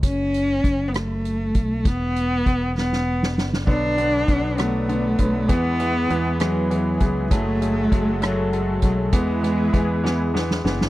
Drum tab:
CC |------------|------------|x-----------|------------|
HH |x-x-x-x-x-x-|x-x-x-------|--x-x-x-x-x-|x-x-x-x-x-x-|
SD |------r-----|------oo-ooo|------r-----|------r-----|
BD |o---o-----o-|o---o-------|o---o-----o-|o---------o-|

CC |------------|------------|
HH |x-x-x-x-x-x-|x-x-x-------|
SD |------r-----|--r---o-oooo|
BD |o---o-----o-|o---o-------|